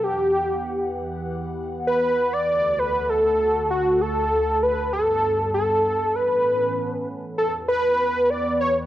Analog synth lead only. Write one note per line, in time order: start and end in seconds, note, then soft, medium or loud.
0.03 0.95 G4 medium
1.87 2.34 B4 loud
2.33 2.80 D5 loud
2.79 3.11 B4 loud
3.09 3.70 A4 loud
3.71 4.03 F#4 medium
4.01 4.64 A4 loud
4.63 4.92 B4 loud
4.93 5.50 A4 loud
5.54 6.17 A4 medium
6.15 7.07 B4 medium
7.38 7.52 A4 loud
7.69 8.31 B4 loud
8.30 8.60 D5 loud
8.61 8.74 C#5 loud